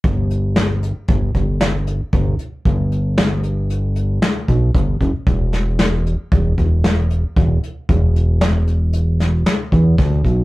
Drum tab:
HH |xxxxxxxxxx|xxxxxxxxxx|xxxxxxxxxx|xxxxxxxxxx|
SD |--o---o---|--o---o---|-oo---o---|--o--oo-o-|
BD |o---oo--o-|o------ooo|o---oo--o-|o------ooo|